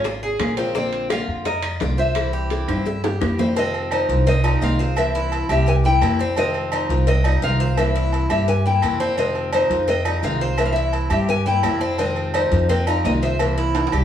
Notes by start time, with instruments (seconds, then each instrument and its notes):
Already playing: upright bass G#1
0.04 cuban tres F4, muted steel-string acoustic guitar stroke, high bongo, high timbale
0.23 cuban tres G#4, high bongo
0.39 upright bass A#1, steel-string acoustic guitar G#3 C#4 F4 A#4, high bongo, low bongo, high timbale, low timbale, claves
0.57 steel-string acoustic guitar F3 G#3 C#4 F4 A#4, cuban tres C4, high bongo, high timbale
0.74 steel-string acoustic guitar D3 A#3 C4 F4, cuban tres C4, nylon-string guitar D5, high bongo
0.93 high timbale
1.10 steel-string acoustic guitar D3 A#3 C4 F4, cuban tres F4, nylon-string guitar F5, high bongo, high timbale, claves
1.27 upright bass F2
1.45 cuban tres A#4, nylon-string guitar D#5, muted steel-string acoustic guitar stroke, high bongo, high timbale
1.62 cuban tres F4, high timbale, claves
1.80 upright bass C2, steel-string acoustic guitar D3 A#3 C4 F4, nylon-string guitar D5, high bongo, low bongo, high timbale
1.97 steel-string acoustic guitar A#3 C4 F4, cuban tres C5, nylon-string guitar E5
2.15 steel-string acoustic guitar C3 E3 G3 C4 E4, high bongo, high timbale, claves
2.33 cuban tres G4
2.50 steel-string acoustic guitar C3 E3 G3 C4 E4, high bongo, high timbale
2.68 upright bass G2, cuban tres C4, high bongo, high timbale, claves
2.85 cuban tres E4, muted steel-string acoustic guitar stroke, high bongo
3.04 cuban tres G4, high bongo, high timbale
3.20 upright bass F2, steel-string acoustic guitar E3 G3 C4 E4, low bongo, low timbale, claves
3.38 steel-string acoustic guitar E3 G3 C4 E4, cuban tres C4, low bongo, low timbale
3.56 steel-string acoustic guitar C3 D#3 G#3 C4 F4, cuban tres C4, nylon-string guitar D#5, cowbell, low agogo
3.74 low agogo
3.91 cuban tres D#4, nylon-string guitar C5, cowbell, low agogo, claves
4.09 upright bass C2, steel-string acoustic guitar G#3 C4 F4, cowbell
4.26 cuban tres C4, nylon-string guitar D#5, muted steel-string acoustic guitar stroke, cowbell, low agogo
4.44 steel-string acoustic guitar G#3 C4 F4, cuban tres D#4, low agogo, claves
4.61 upright bass C2, steel-string acoustic guitar C3 D#3 G#3 C4 F4, nylon-string guitar F5, cowbell, low timbale
4.79 steel-string acoustic guitar G#3 C4 F4, cuban tres C5, cowbell
4.96 steel-string acoustic guitar C3 E3 A#3 C4 E4, nylon-string guitar E5, cowbell, low agogo, claves
5.15 cuban tres E4, cowbell
5.32 cowbell, low agogo
5.49 upright bass C2, steel-string acoustic guitar A#3 C4 E4, cuban tres G4, nylon-string guitar E5, low agogo, claves
5.66 nylon-string guitar G#5, muted steel-string acoustic guitar stroke, cowbell
5.84 steel-string acoustic guitar A#3 C4 E4, cuban tres E4, nylon-string guitar G5
6.01 upright bass F2, steel-string acoustic guitar C3 E3 A#3 C4 E4, cowbell, low timbale, low agogo, claves
6.19 steel-string acoustic guitar A#3 C4 E4, cuban tres C4, low agogo
6.36 steel-string acoustic guitar C3 D#3 G#3 C4 F4, cuban tres C4, nylon-string guitar D#5, cowbell, low agogo
6.54 low agogo
6.72 cuban tres D#4, nylon-string guitar C5, cowbell, low agogo, claves
6.89 upright bass C2, steel-string acoustic guitar G#3 C4 F4, cowbell
7.07 cuban tres C4, nylon-string guitar D#5, muted steel-string acoustic guitar stroke, cowbell, low agogo
7.24 steel-string acoustic guitar G#3 C4 F4, cuban tres D#4, low agogo, claves
7.42 upright bass C2, steel-string acoustic guitar C3 D#3 G#3 C4 F4, nylon-string guitar F5, cowbell
7.60 steel-string acoustic guitar G#3 C4 F4, cuban tres C5, cowbell
7.77 steel-string acoustic guitar C3 E3 A#3 C4 E4, nylon-string guitar E5, cowbell, low agogo, claves
7.95 cuban tres E4, cowbell
8.13 cowbell, low agogo
8.30 upright bass G2, steel-string acoustic guitar A#3 C4 E4, cuban tres G4, nylon-string guitar E5, low agogo, claves
8.48 nylon-string guitar G#5, muted steel-string acoustic guitar stroke, cowbell
8.65 steel-string acoustic guitar A#3 C4 E4, cuban tres E4, nylon-string guitar G5
8.82 upright bass F2, steel-string acoustic guitar C3 E3 A#3 C4 E4, cowbell, low agogo, claves
9.00 steel-string acoustic guitar A#3 C4 E4, cuban tres C4, low agogo
9.17 steel-string acoustic guitar C3 D#3 G#3 C4 F4, cuban tres C4, nylon-string guitar D#5, cowbell, low agogo
9.35 low agogo
9.53 cuban tres D#4, nylon-string guitar C5, cowbell, low agogo, claves
9.70 upright bass F2, steel-string acoustic guitar G#3 C4 F4, cowbell
9.87 cuban tres C4, nylon-string guitar D#5, muted steel-string acoustic guitar stroke, cowbell, low agogo
10.05 steel-string acoustic guitar G#3 C4 F4, cuban tres D#4, low agogo, claves
10.23 upright bass C2, steel-string acoustic guitar C3 D#3 G#3 C4 F4, nylon-string guitar F5, cowbell
10.40 steel-string acoustic guitar G#3 C4 F4, cuban tres C5, cowbell
10.57 steel-string acoustic guitar C3 E3 A#3 C4 E4, nylon-string guitar E5, cowbell, low agogo, claves
10.66 nylon-string guitar F5
10.73 cuban tres E4, nylon-string guitar E5, cowbell
10.93 cowbell, low agogo
11.10 upright bass G2, steel-string acoustic guitar A#3 C4 E4, cuban tres G4, nylon-string guitar E5, low agogo, claves
11.28 nylon-string guitar G#5, muted steel-string acoustic guitar stroke, cowbell
11.46 steel-string acoustic guitar A#3 C4 E4, cuban tres E4, nylon-string guitar G5
11.63 upright bass F2, steel-string acoustic guitar C3 E3 A#3 C4 E4, cowbell, low timbale, low agogo, claves
11.81 steel-string acoustic guitar A#3 C4 E4, cuban tres C4, low agogo
11.98 steel-string acoustic guitar C3 D#3 G#3 C4 F4, cuban tres C4, nylon-string guitar D#5, cowbell, low agogo
12.16 low agogo
12.34 cuban tres D#4, nylon-string guitar C5, cowbell, low agogo, claves
12.51 upright bass F2, steel-string acoustic guitar G#3 C4 F4, cowbell
12.69 cuban tres C4, nylon-string guitar D#5, muted steel-string acoustic guitar stroke, cowbell, low agogo
12.87 steel-string acoustic guitar G#3 C4 F4, cuban tres D#4, nylon-string guitar F5, low agogo, claves
13.04 upright bass C2, steel-string acoustic guitar C3 D#3 G#3 C4 F4, nylon-string guitar D#5, cowbell, low timbale
13.22 steel-string acoustic guitar G#3 C4 F4, cuban tres C5, nylon-string guitar E5, cowbell
13.39 steel-string acoustic guitar C3 E3 A#3 C4 E4, cowbell, low agogo, claves
13.58 cuban tres E4, cowbell
13.75 cowbell, high timbale, low agogo
13.87 high timbale
13.92 upright bass C2, steel-string acoustic guitar A#3 C4 E4, cuban tres G4, low agogo, claves